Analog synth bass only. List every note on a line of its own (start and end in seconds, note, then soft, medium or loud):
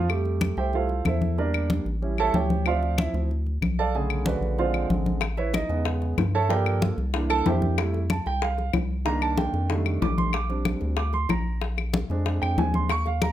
0.00 0.52 F2 medium
0.57 1.02 C2 medium
1.05 1.80 E2 loud
1.85 2.30 A1 loud
2.33 3.08 D2 loud
3.14 3.58 D2 medium
3.61 4.36 B1 medium
4.41 4.86 A#1 medium
4.90 5.64 A1 medium
5.69 6.14 E2 loud
6.18 6.92 G2 loud
6.98 7.42 C2 loud
7.46 8.20 F2 medium
8.26 8.71 C2 medium
8.73 9.48 C2 medium
9.53 9.98 F2 medium
10.02 10.76 A#1 loud
10.82 11.26 D2 loud
11.30 12.04 A#1 medium
12.10 12.40 F2 medium
12.42 12.57 F2 medium
12.58 13.32 D#2 loud